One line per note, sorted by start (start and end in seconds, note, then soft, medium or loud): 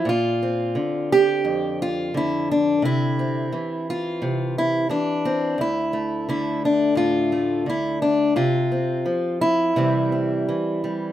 0.05 0.75 A#2 medium
0.05 1.12 F4 medium
0.43 2.80 C4 soft
0.75 2.13 D3 medium
1.12 1.81 G4 loud
1.45 2.79 F2 medium
1.82 2.16 F4 medium
2.14 3.52 D3 medium
2.14 2.50 E4 medium
2.51 2.85 D4 medium
2.82 3.52 C3 medium
2.82 3.88 E4 loud
3.19 5.24 C4 medium
3.52 4.88 E3 medium
3.90 4.57 F4 medium
4.22 4.90 C3 medium
4.58 4.90 E4 medium
4.89 5.54 E3 medium
4.89 5.59 D4 medium
5.25 5.59 C4 medium
5.58 8.36 D2 medium
5.58 6.28 E4 medium
5.93 7.31 A3 soft
6.29 7.65 D3 medium
6.29 6.63 E4 medium
6.65 6.97 D4 medium
6.95 7.66 A2 medium
6.95 7.67 F4 medium
7.32 8.32 A3 soft
7.66 8.36 D3 medium
7.66 8.02 E4 medium
8.02 8.36 D4 medium
8.36 9.06 C3 medium
8.36 9.41 F4 medium
8.72 9.72 C4 soft
9.06 9.72 F3 medium
9.41 11.12 E4 loud
9.76 10.47 C3 medium
9.76 10.47 E3 soft
9.76 10.83 G3 soft
9.76 10.11 C4 soft
10.12 11.12 C4 soft
10.49 11.12 E3 medium
10.84 11.12 G3 soft